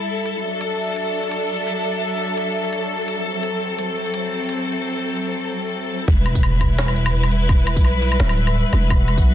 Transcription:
Already playing: string section G3 E4 A4, synth texture E5
0.26 closed hi-hat
0.43 string section F#3 D4
0.61 closed hi-hat
0.96 closed hi-hat
1.23 closed hi-hat
1.31 closed hi-hat
1.67 closed hi-hat
2.37 closed hi-hat
2.65 closed hi-hat
2.73 closed hi-hat
3.08 closed hi-hat
3.26 string section C4
3.43 closed hi-hat
3.79 closed hi-hat
4.06 closed hi-hat
4.14 closed hi-hat
4.49 closed hi-hat
6.08 808-style bass E1, string section G3 E4 B4, synth texture E5, kick, impact
6.26 closed hi-hat, low woodblock
6.35 kick, tambourine
6.43 low woodblock
6.61 kick, closed hi-hat, low woodblock
6.79 snare, tambourine
6.88 low woodblock
6.96 closed hi-hat
7.06 low woodblock
7.24 low woodblock
7.31 closed hi-hat
7.49 kick, low woodblock
7.67 closed hi-hat, tambourine, low woodblock
7.76 808-style bass B1, kick, tambourine
7.84 low woodblock
8.02 closed hi-hat
8.12 low woodblock
8.20 808-style bass D1, snare
8.29 low woodblock
8.37 closed hi-hat
8.47 low woodblock
8.73 808-style bass E1, closed hi-hat, low woodblock
8.90 string section F#4, kick, low woodblock
9.08 closed hi-hat, low woodblock
9.18 808-style bass B1, kick, tambourine

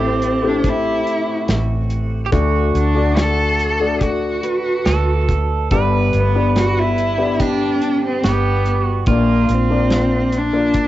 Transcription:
Already playing: fingered electric bass A1, felt piano A1 A2 A3 C4 E4 C5, pedal steel guitar G4, steel-string acoustic guitar A4 C5
0.05 cello C4
0.22 closed hi-hat
0.43 felt piano A3 C4 E4 G4
0.48 cello D4
0.64 kick, closed hi-hat
0.69 cello E4
1.07 closed hi-hat
1.30 pedal steel guitar F#4
1.48 fingered electric bass A1, snare, closed hi-hat
1.90 closed hi-hat
2.26 pedal steel guitar G4
2.32 fingered electric bass D2, felt piano D2 D3 A3 D4 F#4 D5, pedal steel guitar F#4, kick, closed hi-hat
2.75 fingered electric bass D2, cello D4, closed hi-hat
2.95 felt piano A3 D4 F#4 D5
3.17 cello A4, snare, closed hi-hat
3.59 closed hi-hat
3.80 felt piano A3 D4 F#4 D5
4.01 cello F#4, kick, closed hi-hat
4.43 steel-string acoustic guitar B4, closed hi-hat
4.85 fingered electric bass D2, pedal steel guitar A4, snare, closed hi-hat
5.29 kick, closed hi-hat
5.71 fingered electric bass G1, felt piano G1 G2 B3 D4 G4 D5, pedal steel guitar B4, kick, closed hi-hat
6.13 fingered electric bass G1, cello B3, closed hi-hat
6.35 felt piano B3 D4 G4 D5
6.56 cello F#4, snare, closed hi-hat
6.79 cello E4
6.98 closed hi-hat
7.18 felt piano B3 D4 G4 D5
7.40 cello D4, steel-string acoustic guitar G4, kick, closed hi-hat
7.82 closed hi-hat
8.06 cello C4
8.24 fingered electric bass G1, cello B3, pedal steel guitar G4, snare, closed hi-hat
8.66 closed hi-hat
8.83 pedal steel guitar F#4
9.06 fingered electric bass A#1, felt piano A#1 A#2 A#3 D4 F4 D5, cello A#3, pedal steel guitar F4, kick, closed hi-hat
9.49 fingered electric bass A#1, cello C4, closed hi-hat
9.70 felt piano A#3 D4 F4 D5
9.90 snare, closed hi-hat
10.32 closed hi-hat
10.37 cello D4
10.53 felt piano A#3 D4 F4 D5
10.74 kick, closed hi-hat

